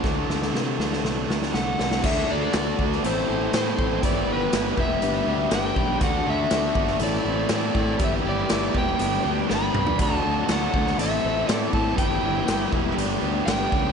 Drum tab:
CC |----------------|x---------------|----------------|----------------|
HH |----------------|----x---x---x---|x---x---x---x---|x---x---x---x---|
SD |o-ooo-ooo-ooo-oo|----o--o----o---|----o-------o---|----o--o----o---|
T2 |----------------|----------------|----------------|----------------|
FT |----------------|----------------|----------------|----------------|
BD |o---------------|o-----o-------o-|o-----o-------o-|o-----o-------o-|

CC |----------------|x---------------|----------------|
HH |x---x---x-------|x---x---x---x---|x---x---x---x---|
SD |----o-------o---|----o--o----o---|----o-------o---|
T2 |--------------o-|----------------|----------------|
FT |---------------o|----------------|----------------|
BD |o-----o---------|o-----o-------o-|o-----o-------o-|